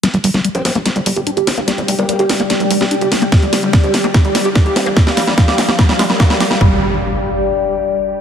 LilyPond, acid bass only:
\new Staff \with { instrumentName = "Acid bass" } { \clef bass \time 4/4 \key g \minor \tempo 4 = 146 g16 g16 g16 g16 g16 g'16 g16 bes16 g16 g16 g16 g'16 d'16 g'16 g16 bes16 | g16 g16 g16 g16 g16 g'16 g16 bes16 g16 g16 g16 g'16 d'16 g'16 g16 bes16 | g16 g16 g16 g16 g16 g'16 g16 bes16 g16 g16 g16 g'16 d'16 g'16 g16 bes16 | g16 g16 g16 g16 g16 g'16 g16 bes16 g16 g16 aes16 g16 bes16 g16 g'16 g16 |
g8 r2. r8 | }